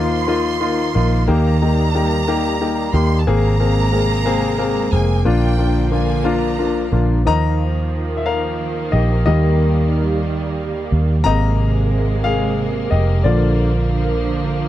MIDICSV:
0, 0, Header, 1, 5, 480
1, 0, Start_track
1, 0, Key_signature, -3, "major"
1, 0, Tempo, 665188
1, 929, Time_signature, 6, 3, 24, 8
1, 10596, End_track
2, 0, Start_track
2, 0, Title_t, "Violin section"
2, 0, Program_c, 0, 48
2, 0, Note_on_c, 0, 84, 96
2, 901, Note_off_c, 0, 84, 0
2, 924, Note_on_c, 0, 82, 101
2, 2125, Note_off_c, 0, 82, 0
2, 2125, Note_on_c, 0, 84, 92
2, 2308, Note_on_c, 0, 81, 74
2, 2314, Note_off_c, 0, 84, 0
2, 2353, Note_on_c, 0, 82, 109
2, 2362, Note_off_c, 0, 81, 0
2, 3550, Note_off_c, 0, 82, 0
2, 3554, Note_on_c, 0, 80, 84
2, 3795, Note_off_c, 0, 80, 0
2, 3796, Note_on_c, 0, 79, 86
2, 4248, Note_off_c, 0, 79, 0
2, 4279, Note_on_c, 0, 80, 77
2, 4506, Note_on_c, 0, 82, 81
2, 4519, Note_off_c, 0, 80, 0
2, 4995, Note_off_c, 0, 82, 0
2, 10596, End_track
3, 0, Start_track
3, 0, Title_t, "Grand piano"
3, 0, Program_c, 1, 0
3, 0, Note_on_c, 1, 58, 71
3, 0, Note_on_c, 1, 63, 60
3, 0, Note_on_c, 1, 65, 81
3, 150, Note_off_c, 1, 63, 0
3, 151, Note_off_c, 1, 58, 0
3, 152, Note_off_c, 1, 65, 0
3, 197, Note_on_c, 1, 58, 83
3, 202, Note_on_c, 1, 63, 74
3, 203, Note_on_c, 1, 65, 92
3, 390, Note_off_c, 1, 58, 0
3, 392, Note_off_c, 1, 63, 0
3, 392, Note_off_c, 1, 65, 0
3, 435, Note_on_c, 1, 58, 73
3, 439, Note_on_c, 1, 63, 68
3, 441, Note_on_c, 1, 65, 82
3, 629, Note_off_c, 1, 58, 0
3, 631, Note_off_c, 1, 63, 0
3, 632, Note_off_c, 1, 65, 0
3, 681, Note_on_c, 1, 58, 72
3, 684, Note_on_c, 1, 63, 64
3, 687, Note_on_c, 1, 65, 81
3, 872, Note_off_c, 1, 58, 0
3, 874, Note_off_c, 1, 63, 0
3, 876, Note_off_c, 1, 65, 0
3, 920, Note_on_c, 1, 58, 93
3, 923, Note_on_c, 1, 63, 77
3, 923, Note_on_c, 1, 67, 94
3, 1112, Note_off_c, 1, 58, 0
3, 1114, Note_off_c, 1, 63, 0
3, 1114, Note_off_c, 1, 67, 0
3, 1167, Note_on_c, 1, 58, 73
3, 1168, Note_on_c, 1, 63, 68
3, 1169, Note_on_c, 1, 67, 75
3, 1356, Note_off_c, 1, 58, 0
3, 1356, Note_off_c, 1, 63, 0
3, 1357, Note_off_c, 1, 67, 0
3, 1405, Note_on_c, 1, 58, 74
3, 1405, Note_on_c, 1, 63, 63
3, 1408, Note_on_c, 1, 67, 80
3, 1594, Note_off_c, 1, 58, 0
3, 1595, Note_off_c, 1, 63, 0
3, 1596, Note_off_c, 1, 67, 0
3, 1643, Note_on_c, 1, 58, 89
3, 1647, Note_on_c, 1, 63, 76
3, 1648, Note_on_c, 1, 67, 97
3, 1833, Note_off_c, 1, 58, 0
3, 1835, Note_off_c, 1, 63, 0
3, 1836, Note_off_c, 1, 67, 0
3, 1884, Note_on_c, 1, 58, 74
3, 1885, Note_on_c, 1, 63, 67
3, 1888, Note_on_c, 1, 67, 84
3, 2072, Note_off_c, 1, 58, 0
3, 2073, Note_off_c, 1, 63, 0
3, 2074, Note_off_c, 1, 67, 0
3, 2119, Note_on_c, 1, 63, 64
3, 2120, Note_on_c, 1, 58, 75
3, 2121, Note_on_c, 1, 67, 80
3, 2309, Note_off_c, 1, 58, 0
3, 2309, Note_off_c, 1, 63, 0
3, 2310, Note_off_c, 1, 67, 0
3, 2360, Note_on_c, 1, 58, 95
3, 2361, Note_on_c, 1, 60, 80
3, 2362, Note_on_c, 1, 68, 101
3, 2548, Note_off_c, 1, 58, 0
3, 2548, Note_off_c, 1, 60, 0
3, 2548, Note_off_c, 1, 68, 0
3, 2595, Note_on_c, 1, 58, 77
3, 2597, Note_on_c, 1, 68, 81
3, 2598, Note_on_c, 1, 60, 70
3, 2784, Note_off_c, 1, 58, 0
3, 2785, Note_off_c, 1, 60, 0
3, 2785, Note_off_c, 1, 68, 0
3, 2831, Note_on_c, 1, 58, 75
3, 2834, Note_on_c, 1, 60, 64
3, 2836, Note_on_c, 1, 68, 83
3, 3021, Note_off_c, 1, 58, 0
3, 3023, Note_off_c, 1, 60, 0
3, 3024, Note_off_c, 1, 68, 0
3, 3069, Note_on_c, 1, 58, 91
3, 3071, Note_on_c, 1, 60, 87
3, 3073, Note_on_c, 1, 68, 104
3, 3260, Note_off_c, 1, 58, 0
3, 3261, Note_off_c, 1, 60, 0
3, 3262, Note_off_c, 1, 68, 0
3, 3306, Note_on_c, 1, 58, 81
3, 3308, Note_on_c, 1, 60, 72
3, 3313, Note_on_c, 1, 68, 80
3, 3498, Note_off_c, 1, 58, 0
3, 3499, Note_off_c, 1, 60, 0
3, 3502, Note_off_c, 1, 68, 0
3, 3553, Note_on_c, 1, 58, 72
3, 3554, Note_on_c, 1, 60, 66
3, 3556, Note_on_c, 1, 68, 77
3, 3741, Note_off_c, 1, 58, 0
3, 3742, Note_off_c, 1, 60, 0
3, 3743, Note_off_c, 1, 68, 0
3, 3786, Note_on_c, 1, 58, 88
3, 3790, Note_on_c, 1, 62, 83
3, 3792, Note_on_c, 1, 65, 96
3, 3978, Note_off_c, 1, 58, 0
3, 3980, Note_off_c, 1, 62, 0
3, 3982, Note_off_c, 1, 65, 0
3, 4026, Note_on_c, 1, 58, 67
3, 4027, Note_on_c, 1, 62, 63
3, 4029, Note_on_c, 1, 65, 74
3, 4219, Note_off_c, 1, 58, 0
3, 4219, Note_off_c, 1, 62, 0
3, 4220, Note_off_c, 1, 65, 0
3, 4266, Note_on_c, 1, 58, 70
3, 4267, Note_on_c, 1, 62, 61
3, 4272, Note_on_c, 1, 65, 76
3, 4460, Note_off_c, 1, 58, 0
3, 4460, Note_off_c, 1, 62, 0
3, 4462, Note_off_c, 1, 65, 0
3, 4502, Note_on_c, 1, 58, 88
3, 4505, Note_on_c, 1, 62, 77
3, 4509, Note_on_c, 1, 65, 93
3, 4698, Note_off_c, 1, 58, 0
3, 4700, Note_off_c, 1, 62, 0
3, 4702, Note_off_c, 1, 65, 0
3, 4748, Note_on_c, 1, 58, 69
3, 4751, Note_on_c, 1, 62, 68
3, 4754, Note_on_c, 1, 65, 77
3, 4943, Note_off_c, 1, 58, 0
3, 4944, Note_off_c, 1, 62, 0
3, 4946, Note_off_c, 1, 65, 0
3, 4993, Note_on_c, 1, 58, 64
3, 4997, Note_on_c, 1, 62, 66
3, 4999, Note_on_c, 1, 65, 70
3, 5186, Note_off_c, 1, 58, 0
3, 5188, Note_off_c, 1, 62, 0
3, 5189, Note_off_c, 1, 65, 0
3, 5234, Note_on_c, 1, 51, 62
3, 5239, Note_on_c, 1, 53, 54
3, 5243, Note_on_c, 1, 58, 69
3, 5243, Note_on_c, 1, 75, 96
3, 5246, Note_on_c, 1, 82, 119
3, 5886, Note_off_c, 1, 75, 0
3, 5897, Note_on_c, 1, 76, 80
3, 5937, Note_off_c, 1, 82, 0
3, 5956, Note_off_c, 1, 76, 0
3, 5959, Note_on_c, 1, 77, 96
3, 5962, Note_on_c, 1, 70, 79
3, 6414, Note_off_c, 1, 70, 0
3, 6436, Note_on_c, 1, 75, 93
3, 6448, Note_on_c, 1, 67, 65
3, 6456, Note_off_c, 1, 77, 0
3, 6651, Note_off_c, 1, 51, 0
3, 6654, Note_off_c, 1, 53, 0
3, 6656, Note_off_c, 1, 58, 0
3, 6663, Note_off_c, 1, 75, 0
3, 6669, Note_off_c, 1, 67, 0
3, 6680, Note_on_c, 1, 75, 99
3, 6683, Note_on_c, 1, 51, 64
3, 6686, Note_on_c, 1, 55, 55
3, 6690, Note_on_c, 1, 58, 73
3, 6690, Note_on_c, 1, 67, 69
3, 7852, Note_off_c, 1, 75, 0
3, 7857, Note_off_c, 1, 67, 0
3, 8093, Note_off_c, 1, 51, 0
3, 8094, Note_off_c, 1, 55, 0
3, 8096, Note_off_c, 1, 58, 0
3, 8110, Note_on_c, 1, 82, 127
3, 8117, Note_on_c, 1, 48, 65
3, 8123, Note_on_c, 1, 56, 54
3, 8125, Note_on_c, 1, 58, 69
3, 8127, Note_on_c, 1, 75, 94
3, 8814, Note_off_c, 1, 75, 0
3, 8832, Note_on_c, 1, 77, 107
3, 8846, Note_on_c, 1, 68, 82
3, 8856, Note_off_c, 1, 82, 0
3, 9294, Note_off_c, 1, 68, 0
3, 9313, Note_on_c, 1, 75, 85
3, 9325, Note_on_c, 1, 67, 70
3, 9330, Note_off_c, 1, 77, 0
3, 9529, Note_off_c, 1, 48, 0
3, 9532, Note_off_c, 1, 56, 0
3, 9533, Note_off_c, 1, 58, 0
3, 9546, Note_off_c, 1, 67, 0
3, 9553, Note_on_c, 1, 74, 92
3, 9556, Note_on_c, 1, 50, 63
3, 9560, Note_on_c, 1, 53, 57
3, 9561, Note_on_c, 1, 58, 67
3, 9564, Note_off_c, 1, 75, 0
3, 9568, Note_on_c, 1, 65, 68
3, 9878, Note_off_c, 1, 50, 0
3, 9880, Note_off_c, 1, 53, 0
3, 9880, Note_off_c, 1, 58, 0
3, 10596, Note_off_c, 1, 65, 0
3, 10596, Note_off_c, 1, 74, 0
3, 10596, End_track
4, 0, Start_track
4, 0, Title_t, "String section"
4, 0, Program_c, 2, 48
4, 0, Note_on_c, 2, 51, 75
4, 0, Note_on_c, 2, 53, 80
4, 0, Note_on_c, 2, 58, 87
4, 896, Note_off_c, 2, 53, 0
4, 933, Note_on_c, 2, 55, 72
4, 2335, Note_off_c, 2, 51, 0
4, 2338, Note_off_c, 2, 58, 0
4, 2353, Note_off_c, 2, 55, 0
4, 2358, Note_on_c, 2, 48, 80
4, 2362, Note_on_c, 2, 56, 77
4, 2363, Note_on_c, 2, 58, 93
4, 3778, Note_off_c, 2, 48, 0
4, 3780, Note_off_c, 2, 56, 0
4, 3781, Note_off_c, 2, 58, 0
4, 3797, Note_on_c, 2, 53, 73
4, 3801, Note_on_c, 2, 50, 80
4, 3801, Note_on_c, 2, 58, 90
4, 5230, Note_off_c, 2, 53, 0
4, 5230, Note_off_c, 2, 58, 0
4, 5232, Note_off_c, 2, 50, 0
4, 5239, Note_on_c, 2, 51, 88
4, 5239, Note_on_c, 2, 58, 91
4, 5241, Note_on_c, 2, 53, 77
4, 6669, Note_off_c, 2, 53, 0
4, 6673, Note_on_c, 2, 55, 80
4, 8091, Note_off_c, 2, 51, 0
4, 8091, Note_off_c, 2, 58, 0
4, 8102, Note_off_c, 2, 55, 0
4, 8121, Note_on_c, 2, 56, 80
4, 8121, Note_on_c, 2, 58, 102
4, 8123, Note_on_c, 2, 48, 87
4, 9545, Note_off_c, 2, 56, 0
4, 9546, Note_off_c, 2, 48, 0
4, 9560, Note_on_c, 2, 50, 85
4, 9563, Note_on_c, 2, 53, 82
4, 10596, Note_off_c, 2, 50, 0
4, 10596, Note_off_c, 2, 53, 0
4, 10596, Note_off_c, 2, 58, 0
4, 10596, End_track
5, 0, Start_track
5, 0, Title_t, "Fingered electric bass"
5, 0, Program_c, 3, 33
5, 0, Note_on_c, 3, 39, 94
5, 658, Note_off_c, 3, 39, 0
5, 691, Note_on_c, 3, 34, 90
5, 916, Note_off_c, 3, 34, 0
5, 928, Note_on_c, 3, 39, 102
5, 2098, Note_off_c, 3, 39, 0
5, 2120, Note_on_c, 3, 39, 93
5, 2346, Note_off_c, 3, 39, 0
5, 2362, Note_on_c, 3, 32, 100
5, 3526, Note_off_c, 3, 32, 0
5, 3556, Note_on_c, 3, 29, 96
5, 3781, Note_off_c, 3, 29, 0
5, 3799, Note_on_c, 3, 34, 95
5, 4974, Note_off_c, 3, 34, 0
5, 4997, Note_on_c, 3, 34, 83
5, 5226, Note_off_c, 3, 34, 0
5, 5247, Note_on_c, 3, 39, 104
5, 6418, Note_off_c, 3, 39, 0
5, 6446, Note_on_c, 3, 34, 99
5, 6671, Note_off_c, 3, 34, 0
5, 6691, Note_on_c, 3, 39, 113
5, 7857, Note_off_c, 3, 39, 0
5, 7881, Note_on_c, 3, 39, 98
5, 8107, Note_off_c, 3, 39, 0
5, 8124, Note_on_c, 3, 32, 109
5, 9292, Note_off_c, 3, 32, 0
5, 9324, Note_on_c, 3, 29, 93
5, 9548, Note_off_c, 3, 29, 0
5, 9557, Note_on_c, 3, 34, 111
5, 10596, Note_off_c, 3, 34, 0
5, 10596, End_track
0, 0, End_of_file